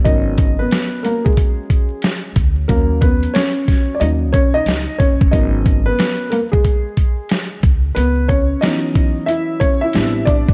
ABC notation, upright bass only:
X:1
M:4/4
L:1/16
Q:"Swing 16ths" 1/4=91
K:G#m
V:1 name="Upright bass" clef=bass
G,,,4 z8 z2 =D,,2 | D,,4 z4 D,,2 B,,,2 C,, z F,,, =G,,, | G,,,4 z8 z2 C,,2 | C,,4 z8 =A,,,3 =G,,, |]